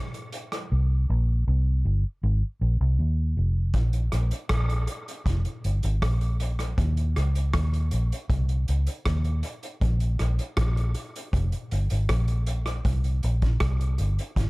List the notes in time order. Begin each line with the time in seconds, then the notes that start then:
0.14 closed hi-hat
0.32 closed hi-hat
0.52 cross-stick, closed hi-hat
0.72 C2
1.10 A#1
1.48 C2
1.85 G1
2.23 G#1
2.61 A#1
2.81 C2
2.99 D#2
3.37 F1
3.74 A#1, kick, closed hi-hat
3.93 closed hi-hat
4.12 A#1, cross-stick, closed hi-hat
4.31 closed hi-hat
4.49 A#1, kick, cross-stick, closed hi-hat
4.70 closed hi-hat
4.87 closed hi-hat
5.08 closed hi-hat
5.26 F1, kick, closed hi-hat
5.45 closed hi-hat
5.64 G1, closed hi-hat
5.83 G#1, closed hi-hat
6.02 A#1, kick, cross-stick, closed hi-hat
6.21 closed hi-hat
6.40 closed hi-hat
6.59 cross-stick, closed hi-hat
6.78 D#2, kick, closed hi-hat
6.97 closed hi-hat
7.16 C#2, cross-stick, closed hi-hat
7.35 closed hi-hat
7.54 D#2, kick, cross-stick, closed hi-hat
7.74 closed hi-hat
7.91 A#1, closed hi-hat
8.12 closed hi-hat
8.30 C2, kick, closed hi-hat
8.49 closed hi-hat
8.68 C#2, closed hi-hat
8.87 closed hi-hat
9.06 D#2, kick, cross-stick, closed hi-hat
9.24 closed hi-hat
9.43 closed hi-hat
9.63 closed hi-hat
9.81 A#1, kick, closed hi-hat
10.00 closed hi-hat
10.19 A#1, cross-stick, closed hi-hat
10.39 closed hi-hat
10.57 A#1, kick, cross-stick, closed hi-hat
10.77 closed hi-hat
10.94 closed hi-hat
11.16 closed hi-hat
11.33 F1, kick, closed hi-hat
11.52 closed hi-hat
11.71 G1, closed hi-hat
11.90 G#1, closed hi-hat
12.09 A#1, kick, cross-stick, closed hi-hat
12.28 closed hi-hat
12.46 closed hi-hat
12.66 cross-stick, closed hi-hat
12.85 C2, kick, closed hi-hat
13.04 closed hi-hat
13.23 A#1, closed hi-hat
13.42 kick, closed hi-hat
13.60 C2, kick, cross-stick, closed hi-hat
13.81 closed hi-hat
13.98 G1, closed hi-hat
14.19 closed hi-hat
14.36 G#1, kick, closed hi-hat